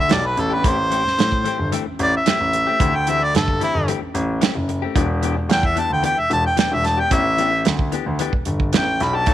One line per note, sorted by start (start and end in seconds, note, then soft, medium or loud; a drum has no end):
0.00 0.15 E5 medium
0.09 0.35 B1 medium
0.09 0.23 E3 medium
0.09 0.24 B3 medium
0.09 0.24 D4 medium
0.09 0.23 G4 medium
0.09 snare loud
0.09 closed hi-hat medium
0.13 0.28 D5 medium
0.24 0.42 B4 medium
0.24 muted clean electric guitar stroke soft
0.37 0.61 A1 medium
0.37 0.56 A4 medium
0.37 muted clean electric guitar stroke soft
0.37 closed hi-hat medium
0.50 0.64 B3 soft
0.50 0.65 D4 soft
0.50 0.64 G4 soft
0.54 0.70 B4 medium
0.64 1.01 A1 medium
0.64 0.78 E3 medium
0.64 0.78 A3 medium
0.64 0.78 C4 medium
0.64 0.77 G4 medium
0.64 kick loud
0.64 closed hi-hat medium
0.68 1.71 C5 medium
0.78 muted clean electric guitar stroke soft
0.90 1.04 E3 medium
0.90 1.05 A3 medium
0.90 1.04 C4 medium
0.90 1.03 G4 medium
0.90 closed hi-hat medium
1.05 1.18 A1 soft
1.05 muted clean electric guitar stroke soft
1.05 snare soft
1.18 1.43 A2 medium
1.18 muted clean electric guitar stroke soft
1.18 snare loud
1.18 closed hi-hat medium
1.32 kick medium
1.45 1.58 E3 medium
1.45 1.59 A3 medium
1.45 1.59 C4 medium
1.45 1.58 G4 medium
1.45 closed hi-hat medium
1.59 1.71 G1 medium
1.59 muted clean electric guitar stroke soft
1.72 1.86 E3 medium
1.72 1.86 A3 medium
1.72 1.86 C4 medium
1.72 1.85 G4 medium
1.72 closed hi-hat medium
1.86 1.93 A1 soft
1.86 muted clean electric guitar stroke soft
1.99 2.12 A1 medium
1.99 muted clean electric guitar stroke soft
1.99 closed hi-hat medium
2.03 2.14 D5 medium
2.17 2.98 E5 medium
2.26 2.33 A1 soft
2.26 2.40 E3 medium
2.26 2.41 A3 medium
2.26 2.40 C4 medium
2.26 2.39 G4 medium
2.26 snare loud
2.26 closed hi-hat medium
2.40 2.64 A1 medium
2.40 muted clean electric guitar stroke soft
2.53 muted clean electric guitar stroke soft
2.53 closed hi-hat medium
2.67 2.80 A3 soft
2.67 2.81 C4 soft
2.67 2.80 G4 medium
2.80 3.30 D2 medium
2.80 2.94 E3 medium
2.80 2.94 A3 medium
2.80 2.94 C4 medium
2.80 2.93 G4 medium
2.80 kick loud
2.80 closed hi-hat medium
2.94 3.12 G5 medium
2.94 muted clean electric guitar stroke soft
3.07 3.21 E3 medium
3.07 3.21 A3 medium
3.07 3.21 C4 medium
3.07 3.20 G4 medium
3.07 3.25 E5 medium
3.07 closed hi-hat medium
3.21 3.35 D5 medium
3.21 muted clean electric guitar stroke soft
3.34 3.58 G1 medium
3.34 3.61 A4 medium
3.34 muted clean electric guitar stroke soft
3.34 snare loud
3.34 closed hi-hat medium
3.48 kick medium
3.60 3.74 E3 soft
3.60 3.75 A3 medium
3.60 3.74 C4 medium
3.60 3.88 E4 medium
3.60 3.74 G4 medium
3.60 closed hi-hat medium
3.74 3.86 G1 medium
3.74 muted clean electric guitar stroke soft
3.88 4.02 E3 medium
3.88 4.02 A3 medium
3.88 4.01 C4 medium
3.88 4.00 G4 medium
3.88 closed hi-hat medium
4.02 4.08 A1 soft
4.02 muted clean electric guitar stroke soft
4.14 4.39 A1 medium
4.14 muted clean electric guitar stroke soft
4.14 closed hi-hat medium
4.41 4.55 E3 medium
4.41 4.56 A3 medium
4.41 4.55 C4 medium
4.41 4.54 G4 medium
4.41 snare loud
4.41 closed hi-hat medium
4.55 4.80 F#1 medium
4.55 muted clean electric guitar stroke medium
4.69 muted clean electric guitar stroke soft
4.69 closed hi-hat medium
4.82 4.96 A3 medium
4.82 4.96 C4 medium
4.82 4.96 G4 medium
4.96 5.33 E1 loud
4.96 5.09 E3 medium
4.96 5.10 B3 medium
4.96 5.09 D4 loud
4.96 5.08 G4 medium
4.96 kick loud
4.96 closed hi-hat medium
5.09 muted clean electric guitar stroke medium
5.22 5.36 E3 medium
5.22 5.37 B3 medium
5.22 5.36 D4 medium
5.22 5.35 G4 medium
5.22 closed hi-hat medium
5.36 5.50 E1 soft
5.36 muted clean electric guitar stroke soft
5.49 5.74 E2 medium
5.49 5.67 G5 medium
5.49 muted clean electric guitar stroke soft
5.49 snare loud
5.49 closed hi-hat medium
5.63 5.81 E5 medium
5.63 kick medium
5.76 5.90 E3 soft
5.76 5.91 B3 medium
5.76 5.90 D4 medium
5.76 5.89 G4 medium
5.76 5.91 A5 medium
5.76 closed hi-hat medium
5.90 6.02 D2 medium
5.90 6.04 G5 medium
5.90 muted clean electric guitar stroke soft
6.03 6.17 E3 medium
6.03 6.17 B3 medium
6.03 6.16 D4 medium
6.03 6.15 G4 medium
6.03 6.21 G5 medium
6.03 closed hi-hat medium
6.16 6.24 E1 soft
6.16 6.31 E5 medium
6.16 muted clean electric guitar stroke soft
6.30 6.43 E1 medium
6.30 6.45 A5 medium
6.30 muted clean electric guitar stroke soft
6.30 closed hi-hat medium
6.47 6.58 G5 medium
6.57 6.65 E1 soft
6.57 6.71 E3 medium
6.57 6.71 B3 medium
6.57 6.70 D4 medium
6.57 6.69 G4 medium
6.57 6.76 G5 medium
6.57 snare loud
6.57 closed hi-hat medium
6.70 6.96 E1 medium
6.70 6.87 E5 medium
6.70 muted clean electric guitar stroke soft
6.84 7.01 A5 medium
6.84 muted clean electric guitar stroke soft
6.84 snare soft
6.84 closed hi-hat medium
6.97 7.11 B3 soft
6.97 7.11 D4 soft
6.97 7.11 G4 medium
6.97 7.14 G5 medium
7.11 7.61 A1 medium
7.11 7.25 E3 medium
7.11 7.25 B3 medium
7.11 7.24 D4 medium
7.11 7.24 G4 medium
7.11 7.65 E5 medium
7.11 kick loud
7.11 closed hi-hat medium
7.25 muted clean electric guitar stroke soft
7.37 7.52 E3 medium
7.37 7.52 B3 medium
7.37 7.51 D4 medium
7.37 7.50 G4 medium
7.37 closed hi-hat medium
7.52 muted clean electric guitar stroke soft
7.65 7.90 D2 medium
7.65 muted clean electric guitar stroke soft
7.65 snare loud
7.65 closed hi-hat medium
7.79 kick medium
7.92 8.06 E3 medium
7.92 8.07 B3 medium
7.92 8.06 D4 medium
7.92 8.05 G4 medium
7.92 closed hi-hat medium
8.06 8.18 D2 medium
8.06 muted clean electric guitar stroke soft
8.19 8.33 E3 medium
8.19 8.34 B3 medium
8.19 8.33 D4 medium
8.19 8.32 G4 medium
8.19 closed hi-hat medium
8.33 8.39 E1 soft
8.33 muted clean electric guitar stroke soft
8.33 kick medium
8.45 8.71 G1 medium
8.45 muted clean electric guitar stroke soft
8.45 closed hi-hat medium
8.60 kick medium
8.73 8.98 A1 medium
8.73 8.87 E3 medium
8.73 8.88 B3 medium
8.73 8.87 D4 medium
8.73 8.86 G4 medium
8.73 9.05 G5 medium
8.73 snare loud
8.73 closed hi-hat medium
8.87 muted clean electric guitar stroke soft
9.00 9.25 B1 medium
9.00 9.17 B5 medium
9.00 muted clean electric guitar stroke soft
9.00 snare soft
9.00 closed hi-hat medium
9.13 9.28 B3 soft
9.13 9.28 D4 soft
9.13 9.27 G4 medium
9.13 9.34 A5 medium
9.26 9.34 B1 medium
9.26 9.34 F#3 medium
9.26 9.34 A3 medium
9.26 9.34 D#4 medium
9.26 9.34 F#4 medium
9.26 kick loud
9.26 closed hi-hat medium